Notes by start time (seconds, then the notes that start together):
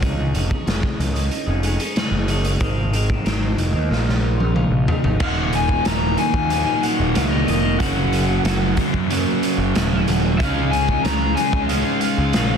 0.00 C#2 C#3 G#3 C#4 D#4 G#4, kick, closed hi-hat
0.33 F1 G#3 C#4 D#4 G#4, closed hi-hat
0.50 C#4 D#4 G#4, kick
0.65 F1 C#3 G#3 C#4 D#4 G#4, snare, closed hi-hat
0.82 C#4 D#4 G#4, kick
0.99 C#2, closed hi-hat
1.14 C#4 D#4 G#4, closed hi-hat
1.31 closed hi-hat
1.46 F1 C#4 D#4 G#4
1.63 G#3 C#4 D#4 G#4, closed hi-hat
1.79 C#4 D#4 G#4, closed hi-hat
1.95 C#3 G#3 C#4 D#4 G#4, snare, closed hi-hat
2.12 F#1
2.27 G#3 C#4 D#4 G#4, closed hi-hat
2.44 C#4 D#4 G#4, closed hi-hat
2.60 G#1 G#2 D#3 G#3 C4 D#4, kick, closed hi-hat
2.92 D#3 G#3 C4 D#4, closed hi-hat
3.08 G#3 C4 D#4, kick
3.25 G#1 G#2 D#3 G#3 C4 D#4, snare, closed hi-hat
3.40 G#3 C4 D#4
3.58 F1, closed hi-hat
3.73 D#2 G#3 C4 D#4
3.89 A#1 A#2 F3 A#3 D#4 F4, snare
4.06 A#3 D#4 F4, snare
4.21 F3 A#3 D#4 F4
4.38 A#3 D#4 F4, high tom
4.54 A#2 F3 A#3 D#4 F4, mid tom
4.70 A#1
4.87 F3 A#3 D#4 F4, floor tom
5.03 G#1 A#3 D#4 F4, floor tom
5.19 D#1 D#2 A#2 D#3 F#3 A#3 D#4 F#5, kick, crash
5.51 D#3 F#3 A#3 D#4 G#5, closed hi-hat
5.69 kick
5.84 D#1 D#2 A#2 D#3 F#3 A#3 D#4 A#5, snare, closed hi-hat
6.01 D#3 F#3 A#3 D#4
6.17 D#2 A#2 D#3 G#5, muted clean electric guitar stroke, closed hi-hat
6.34 D#2, kick
6.49 D#2 A#2 D#3 F#3 A#3 D#4, closed hi-hat
6.66 D#3 F#3 A#3 D#4
6.81 D#3 F#3 A#3 D#4 F#5, closed hi-hat
7.00 D#1
7.14 C#2 D#2 A#2 D#3 F#3 A#3 D#4 D#5, snare, closed hi-hat
7.31 D#3 F#3 A#3 D#4
7.47 F1 D#3 F#3 A#3 D#4 D#5, closed hi-hat
7.63 D#3 F#3 A#3 D#4
7.79 F#1 F#2 C#3 F#3 A#3 C#4 F#4 F#5, kick, closed hi-hat
8.11 F#3 A#3 C#4 F#4, closed hi-hat
8.44 F#1 F#2 C#3 F#3 A#3 C#4 F#4, snare, closed hi-hat
8.62 F#3 A#3 C#4 F#4
8.77 F#2 C#3 F#3, muted clean electric guitar stroke, kick, closed hi-hat
8.94 F#2, kick
9.10 F#2 C#3 F#3 A#3 C#4 F#4, closed hi-hat
9.26 F#3 A#3 C#4 F#4
9.43 F#3 A#3 C#4 F#4, closed hi-hat
9.58 F#1
9.75 D#1 F#2 C#3 F#3 A#3 C#4 F#4, snare, closed hi-hat
9.91 F#3 A#3 C#4 F#4
10.07 D#1 F#3 A#3 C#4 F#4, closed hi-hat
10.23 F#3 A#3 C#4 F#4
10.38 C#2 C#3 G#3 C#4 D#4 F5, kick, closed hi-hat
10.43 G#4
10.71 G#3 C#4 D#4 G#4 G#5, closed hi-hat
10.89 kick
11.04 C#2 C#3 G#3 C#4 D#4 G#4 A#5, snare, closed hi-hat
11.20 C#4 D#4 G#4
11.36 G#3 C#4 G#5, muted clean electric guitar stroke, closed hi-hat
11.40 C#3
11.53 C#2, kick
11.61 D#5
11.68 C#3 G#3 C#4 D#4 G#4 F5, closed hi-hat
11.85 C#4 D#4 G#4
12.01 G#3 C#4 D#4 G#4 F5, closed hi-hat
12.18 C#2
12.33 A#1 C#3 G#3 C#4 D#4 G#4, snare, closed hi-hat
12.50 C#4 D#4 G#4